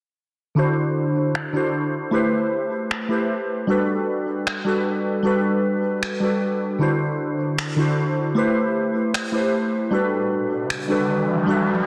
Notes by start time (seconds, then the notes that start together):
0.55 D3 D4 E4 F#4
0.59 C5
1.35 finger snap
1.53 D3 D4 E4 F#4 C5
2.11 A3 E4 G4 B4
2.15 C5
2.91 finger snap
3.09 A3 E4 G4 B4 C5
3.67 G3 D4 F#4 A4 B4
4.47 finger snap
4.64 G3 D4 F#4 A4
4.68 B4
5.23 G3 D4 F#4 A4 B4
6.03 finger snap
6.20 G3 D4 F#4 A4
6.24 B4
6.79 D3 D4 E4 F#4
6.83 C5
7.58 finger snap
7.76 D3 D4 E4 F#4
7.80 C5
8.35 A3 E4 G4 B4 C5
9.14 finger snap
9.32 A3 E4 G4 B4
9.36 C5
9.90 G3 D4 F#4 A4 B4, riser
10.70 finger snap
10.88 G3 D4 F#4 A4
10.92 B4
11.46 G3 D4 F#4 A4
11.50 B4